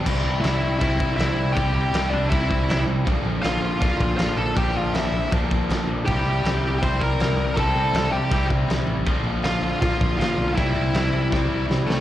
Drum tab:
CC |x-x-x-x-|x-x-x-x-|x-x-x-x-|x-x-x-x-|
SD |--o---o-|--o---o-|--o---o-|--o---o-|
BD |o---oo--|o---oo--|o---oo--|o---oo--|

CC |x-x-x-x-|x-x-x-x-|x-x-x-x-|x-x-----|
SD |--o---o-|--o---o-|--o---o-|--o-o-oo|
BD |o---oo--|o---oo--|o---oo--|o---o---|